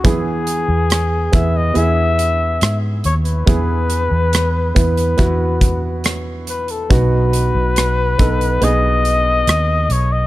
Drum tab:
HH |x-x-x-x-x-x-x-xx|x-x-x-xxx-x-x-xx|x-x-x-xxx-x-x-x-|
SD |----r-------r---|----r-------r---|----r-------r---|
BD |o-----o---------|o-----o-o-o-----|o-----o---------|